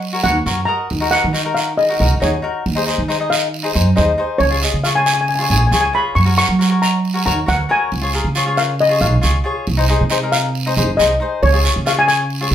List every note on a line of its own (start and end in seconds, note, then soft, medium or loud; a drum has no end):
0.00 0.25 F#3 medium
0.00 0.20 F#5 medium
0.00 long guiro medium
0.13 0.20 F#4 medium
0.13 0.20 A#4 soft
0.13 0.20 C#5 medium
0.23 0.41 D#2 medium
0.23 0.37 F#4 medium
0.23 0.37 A#4 medium
0.23 0.38 C#5 medium
0.23 0.69 F#5 medium
0.46 0.63 F#2 medium
0.46 0.59 F#4 medium
0.46 0.60 A#4 medium
0.46 0.60 C#5 medium
0.46 short guiro medium
0.65 0.88 F#4 medium
0.65 0.88 A#4 medium
0.65 0.88 D#5 medium
0.65 1.12 A#5 medium
0.90 1.16 D#2 medium
0.90 long guiro medium
1.00 1.07 D#4 medium
1.00 1.08 F#4 medium
1.00 1.08 A#4 medium
1.11 1.25 D#4 medium
1.11 1.25 F#4 medium
1.11 1.26 A#4 medium
1.11 1.57 F#5 medium
1.11 short guiro medium
1.24 2.01 D#3 medium
1.33 1.40 D#4 medium
1.33 1.41 F#4 medium
1.33 1.41 A#4 medium
1.33 short guiro medium
1.44 1.71 D#4 medium
1.44 1.71 F#4 medium
1.44 1.72 A#4 medium
1.55 1.78 F5 medium
1.55 short guiro medium
1.78 2.23 D#5 medium
1.78 long guiro medium
1.89 1.96 D#4 medium
1.89 1.96 F#4 medium
1.89 1.96 A#4 medium
1.99 2.17 C#2 medium
1.99 2.13 D#4 medium
1.99 2.13 F#4 soft
1.99 2.14 A#4 medium
2.20 2.39 D#2 medium
2.20 2.34 D#4 medium
2.20 2.35 F#4 medium
2.20 2.35 G#4 medium
2.20 2.53 C#5 medium
2.20 short guiro medium
2.42 2.63 D#4 medium
2.42 2.63 F#4 medium
2.42 2.64 A#4 medium
2.66 2.91 D#2 medium
2.66 long guiro medium
2.75 2.83 D#4 medium
2.75 2.83 G#4 medium
2.75 2.83 C5 medium
2.86 3.00 D#4 medium
2.86 3.01 G#4 medium
2.86 3.01 C5 medium
2.86 short guiro medium
2.98 3.77 D#3 medium
3.08 3.16 D#4 medium
3.08 3.16 G#4 medium
3.08 3.16 C5 medium
3.08 short guiro medium
3.20 3.46 D#4 medium
3.20 3.47 G#4 medium
3.20 3.47 D#5 medium
3.30 3.93 F5 medium
3.30 short guiro medium
3.54 long guiro medium
3.63 3.70 D#4 medium
3.63 3.71 G#4 medium
3.63 3.71 C5 medium
3.74 3.92 F#2 medium
3.74 3.88 D#4 medium
3.74 3.88 G#4 medium
3.74 3.89 C5 medium
3.96 4.14 D#2 medium
3.96 4.10 D#4 medium
3.96 4.10 G#4 medium
3.96 4.11 C5 medium
3.96 4.42 D#5 medium
3.96 short guiro medium
4.18 4.38 D#4 medium
4.18 4.39 G#4 medium
4.18 4.39 C5 medium
4.38 4.65 C#2 medium
4.38 4.85 C#5 medium
4.38 long guiro medium
4.50 4.58 F4 medium
4.50 4.58 G#4 medium
4.50 4.59 C#5 medium
4.62 4.76 F4 medium
4.62 4.76 G#4 medium
4.62 4.77 D#5 medium
4.62 short guiro medium
4.74 5.52 C#3 medium
4.84 4.91 F4 medium
4.84 4.92 G#4 medium
4.84 4.92 C#5 medium
4.84 4.96 F5 medium
4.84 short guiro medium
4.95 5.22 F4 medium
4.95 5.22 G#4 medium
4.95 5.23 C#5 medium
4.95 5.05 G#5 medium
5.06 5.12 G#5 medium
5.06 short guiro medium
5.14 5.20 G#5 medium
5.21 5.28 G#5 medium
5.28 5.34 G#5 medium
5.28 long guiro medium
5.35 5.46 F4 medium
5.35 5.46 G#4 medium
5.35 5.42 G#5 medium
5.40 5.47 C#5 medium
5.40 5.50 G#5 medium
5.49 5.67 A#1 medium
5.49 5.63 F4 medium
5.49 5.64 G#4 medium
5.49 5.64 C#5 medium
5.49 5.57 G#5 medium
5.58 5.66 G#5 medium
5.67 5.74 G#5 medium
5.71 5.89 C#2 medium
5.71 5.85 F4 medium
5.71 5.86 G#4 medium
5.71 5.86 C#5 medium
5.71 5.79 G#5 medium
5.71 short guiro medium
5.81 5.88 G#5 medium
5.93 6.14 F4 medium
5.93 6.14 G#4 medium
5.93 6.14 C#5 medium
5.93 6.05 B5 medium
6.15 6.41 F#2 medium
6.15 6.36 C#6 medium
6.15 long guiro medium
6.25 6.33 F#4 medium
6.25 6.33 A#4 medium
6.25 6.34 C#5 medium
6.36 6.51 F#4 medium
6.36 6.51 A#4 medium
6.36 6.52 C#5 medium
6.36 6.83 C#6 loud
6.36 short guiro medium
6.49 7.27 F#3 medium
6.59 6.66 F#4 medium
6.59 6.66 A#4 soft
6.59 6.67 C#5 medium
6.59 short guiro medium
6.69 6.96 F#4 medium
6.69 6.97 A#4 medium
6.69 6.97 C#5 medium
6.82 7.25 A#5 medium
6.82 short guiro medium
7.05 long guiro medium
7.14 7.21 F#4 medium
7.14 7.21 A#4 medium
7.14 7.22 C#5 medium
7.25 7.42 D#2 medium
7.25 7.39 F#4 medium
7.25 7.39 A#4 medium
7.25 7.40 C#5 medium
7.25 7.46 A#5 medium
7.46 7.65 D2 medium
7.46 7.60 F#4 medium
7.46 7.61 A#4 medium
7.46 7.61 C#5 medium
7.46 7.71 F#5 medium
7.46 short guiro medium
7.69 7.89 F#4 medium
7.69 7.89 A#4 medium
7.69 7.90 C#5 medium
7.69 8.32 G#5 medium
7.92 8.17 C#2 medium
7.92 long guiro medium
8.02 8.09 F4 medium
8.02 8.09 G#4 medium
8.02 8.10 C#5 medium
8.13 8.27 F4 medium
8.13 8.27 G#4 medium
8.13 8.28 A#4 medium
8.13 short guiro medium
8.24 9.02 C#3 medium
8.35 8.42 F4 medium
8.35 8.43 G#4 medium
8.35 8.43 C#5 medium
8.35 short guiro medium
8.46 8.72 F4 medium
8.46 8.73 G#4 medium
8.46 8.73 C#5 medium
8.57 8.78 F5 medium
8.57 short guiro medium
8.79 9.02 D#5 medium
8.79 long guiro medium
8.89 8.96 F4 medium
8.89 8.97 G#4 medium
8.89 8.97 C#5 medium
9.00 9.18 B1 medium
9.00 9.14 F4 medium
9.00 9.14 G#4 medium
9.00 9.15 C#5 medium
9.00 9.42 F5 medium
9.21 9.40 C#2 medium
9.21 9.36 F4 medium
9.21 9.36 G#4 medium
9.21 9.36 C#5 medium
9.21 short guiro medium
9.44 9.64 F4 medium
9.44 9.65 G#4 medium
9.44 9.65 C#5 medium
9.67 9.92 C2 medium
9.67 long guiro medium
9.77 9.84 D#4 medium
9.77 9.84 G#4 medium
9.77 9.85 C5 medium
9.88 10.02 D#4 medium
9.88 10.02 G#4 medium
9.88 10.03 C5 medium
9.88 short guiro medium
10.01 10.78 C3 medium
10.10 10.17 D#4 medium
10.10 10.17 G#4 medium
10.10 10.18 C5 medium
10.10 short guiro medium
10.22 10.48 D#4 medium
10.22 10.49 G#4 medium
10.22 10.49 A#4 medium
10.32 11.00 F5 medium
10.32 short guiro medium
10.55 long guiro medium
10.66 10.72 D#4 medium
10.66 10.73 G#4 medium
10.66 10.73 C5 medium
10.76 10.93 F#1 medium
10.76 10.90 D#4 medium
10.76 10.90 G#4 medium
10.76 10.90 C5 medium
10.97 11.16 C2 medium
10.97 11.12 D#4 medium
10.97 11.12 G#4 medium
10.97 11.13 C5 medium
10.97 11.43 D#5 medium
10.97 short guiro medium
11.20 11.40 D#4 medium
11.20 11.40 G#4 medium
11.20 11.41 C5 medium
11.43 11.67 C#2 medium
11.43 11.87 C#5 medium
11.43 long guiro medium
11.53 11.59 F4 medium
11.53 11.60 G#4 medium
11.53 11.60 C#5 medium
11.63 11.77 F4 medium
11.63 11.77 G#4 medium
11.63 11.77 C#5 medium
11.63 short guiro medium
11.76 12.53 C#3 medium
11.85 11.92 F4 medium
11.85 11.93 G#4 medium
11.85 11.93 C#5 medium
11.85 11.97 F5 medium
11.85 short guiro medium
11.97 12.23 F4 medium
11.97 12.24 G#4 medium
11.97 12.24 C#5 medium
11.97 12.07 G#5 loud
12.08 12.55 G#5 medium
12.08 short guiro medium
12.30 long guiro medium
12.41 12.47 F4 medium
12.41 12.47 G#4 medium
12.41 12.48 C#5 medium
12.51 12.55 B1 medium